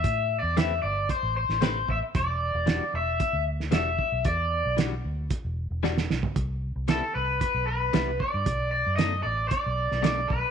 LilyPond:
<<
  \new Staff \with { instrumentName = "Overdriven electric guitar" } { \time 4/4 \key e \minor \tempo 4 = 114 \tuplet 3/2 { e''4 d''8 } e''8 d''8 c''8 c''8 c''8 e''8 | d''4. e''4 r8 e''4 | d''4 r2. | r4 a'8 b'8 b'8 b'4 d''8~ |
d''8 d''8 dis''8 d''8 d''4 d''8 b'8 | }
  \new Staff \with { instrumentName = "Clean electric guitar" } { \time 4/4 \key e \minor r4 <a c' g' b'>8 r4. <a c' g' b'>8 r8 | r4 <e g d' fis'>8 r4. <e g d' fis'>8 r8 | r4 <e g d' fis'>8 r4. <e g d' fis'>8 r8 | r4 <c g b e'>8 r4. <c g b e'>8 r8 |
r4 <b, a d' dis'>8 r4. <b, a d' dis'>8 r8 | }
  \new Staff \with { instrumentName = "Fingered electric bass" } { \clef bass \time 4/4 \key e \minor a,8. e,8. g,,8 r16 a,,8 a,,8. a,,16 r16 | e,,8. e,,8 r16 e,,8 r16 d,8. e,,8 r16 b,,16 | e,8. b,,8. d,8 r16 e,,8 e,,8. b,,16 r16 | c,8. c,8 r16 c,8 r16 b,,8. c,8 r16 g,16 |
b,,8. fis,8. a,,8 r16 b,,8 b,,8. b,,16 r16 | }
  \new DrumStaff \with { instrumentName = "Drums" } \drummode { \time 4/4 <hh bd>4 <hh sn>4 <hh bd>8. sn16 <hh sn>8 bd8 | <hh bd>4 <hh sn>4 <hh bd>8. sn16 <hh sn>8 bd8 | <hh bd>4 <hh sn>4 <hh bd>4 sn16 sn16 sn16 tomfh16 | <hh bd>4 <hh sn>4 <hh bd>4 <hh sn>8 bd8 |
<hh bd>4 <hh sn>4 <hh bd>8. sn16 <hh sn>8 bd8 | }
>>